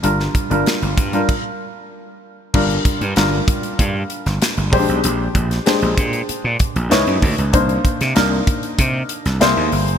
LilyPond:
<<
  \new Staff \with { instrumentName = "Grand piano" } { \time 4/4 \key g \phrygian \tempo 4 = 96 <g d' f' bes'>8 r16 <g d' f' bes'>8 r8 <g d' f' bes'>16 r2 | <g d' f' bes'>8 r8 <g d' f' bes'>4~ <g d' f' bes'>16 r4 r16 <aes c' d' g' c''>8~ | <aes c' d' g' c''>8. r16 <aes d' g' c''>4~ <aes d' g' c''>16 r8. <ces' ees' fes' des''>8. r16 | <bes d' ees' c''>8 r8 <bes d' ees' bes'>4~ <bes d' ees' bes'>16 r8. <bes e' gis' c''>8. r16 | }
  \new Staff \with { instrumentName = "Slap bass" } { \clef bass \time 4/4 \key g \phrygian g,,8 r16 g,,16 r16 g,,16 g,8 r2 | g,,8 r16 g,16 g,,8 r8 g,8 r16 g,,16 r16 g,,16 bes,,16 b,,16 | bes,,8 bes,,8 r16 bes,,16 bes,8 r16 bes,16 r16 bes,,16 des,16 fis,16 d,16 des,16 | c,8 r16 c16 c,8 r8 c8 r16 c,16 c,16 dis,16 g,,16 fis,,16 | }
  \new DrumStaff \with { instrumentName = "Drums" } \drummode { \time 4/4 hh16 sn16 <hh bd>16 hh16 <hh sn>16 hh16 <hh bd>16 hh16 <cymc bd>4 r4 | <cymc bd>16 hh16 <hh bd>16 hh16 <hh sn>8 <hh bd>16 hh16 <hh bd>8 hh16 <hh sn>16 <hh sn>16 hh16 <hho bd>16 hh16 | hh8 <hh bd>16 <hh sn>16 <hh sn>16 hh16 <hh bd>16 hh16 hh8 <hh bd>16 hh16 <hh sn>16 hh16 <hho bd>16 hh16 | <hh bd>16 hh16 <hh bd>16 <hh sn>16 <hh sn>8 <hh bd>16 hh16 <hh bd>8 hh16 <hh sn>16 <hh sn>8 hho16 hh16 | }
>>